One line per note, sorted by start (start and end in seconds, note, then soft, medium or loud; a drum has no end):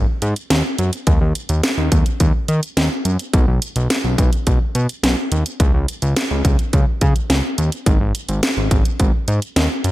0.22 0.34 G#2 loud
0.22 closed hi-hat medium
0.36 closed hi-hat soft
0.50 0.63 D#2 loud
0.50 snare loud
0.50 closed hi-hat medium
0.79 0.91 F#2 medium
0.79 closed hi-hat medium
0.93 closed hi-hat medium
1.07 1.19 D#2 loud
1.07 kick loud
1.07 closed hi-hat medium
1.21 1.33 D#2 medium
1.35 closed hi-hat medium
1.49 1.62 D#2 medium
1.49 closed hi-hat medium
1.63 snare loud
1.63 closed hi-hat medium
1.78 1.90 D#2 medium
1.92 2.04 D#2 medium
1.92 kick loud
1.92 closed hi-hat medium
2.06 closed hi-hat soft
2.20 2.33 D#2 loud
2.20 kick medium
2.20 closed hi-hat medium
2.48 2.61 D#3 medium
2.48 closed hi-hat medium
2.63 closed hi-hat soft
2.77 2.89 D#2 medium
2.77 snare loud
2.77 closed hi-hat medium
3.05 3.17 F#2 medium
3.05 closed hi-hat medium
3.19 closed hi-hat medium
3.34 3.46 B1 loud
3.34 kick loud
3.34 closed hi-hat medium
3.48 3.60 B1 medium
3.62 closed hi-hat medium
3.76 3.88 B1 medium
3.76 closed hi-hat medium
3.90 snare loud
3.90 closed hi-hat medium
4.04 4.16 B1 medium
4.18 4.31 B1 loud
4.18 kick loud
4.18 closed hi-hat medium
4.33 closed hi-hat medium
4.47 4.59 B1 loud
4.47 kick medium
4.47 closed hi-hat medium
4.75 4.87 B2 loud
4.75 closed hi-hat medium
4.89 closed hi-hat soft
5.03 5.15 B1 medium
5.03 snare loud
5.03 closed hi-hat medium
5.32 5.44 D#2 medium
5.32 closed hi-hat medium
5.46 closed hi-hat medium
5.60 5.72 C#2 loud
5.60 kick loud
5.60 closed hi-hat medium
5.74 5.86 C#2 loud
5.88 closed hi-hat medium
6.02 6.15 C#2 loud
6.02 closed hi-hat medium
6.17 snare loud
6.17 closed hi-hat medium
6.31 6.43 C#2 loud
6.45 6.57 C#2 loud
6.45 kick loud
6.45 closed hi-hat medium
6.59 closed hi-hat soft
6.73 6.85 C#2 loud
6.73 kick medium
6.73 closed hi-hat medium
7.01 7.14 C#3 loud
7.01 kick medium
7.01 closed hi-hat medium
7.16 closed hi-hat soft
7.30 7.42 C#2 medium
7.30 snare loud
7.30 closed hi-hat medium
7.58 7.70 D#2 medium
7.58 closed hi-hat medium
7.72 closed hi-hat medium
7.86 7.99 G#1 loud
7.86 kick loud
7.86 closed hi-hat medium
8.00 8.13 G#1 loud
8.15 closed hi-hat medium
8.29 8.41 G#1 medium
8.29 closed hi-hat soft
8.43 snare loud
8.43 closed hi-hat medium
8.57 8.69 G#1 medium
8.71 8.83 G#1 loud
8.71 kick loud
8.71 closed hi-hat medium
8.85 closed hi-hat medium
9.00 9.12 G#1 loud
9.00 kick medium
9.00 closed hi-hat medium
9.28 9.40 G#2 loud
9.28 closed hi-hat medium
9.42 closed hi-hat soft
9.56 9.68 D#2 loud
9.56 snare loud
9.56 closed hi-hat medium
9.84 9.92 F#2 medium
9.84 closed hi-hat medium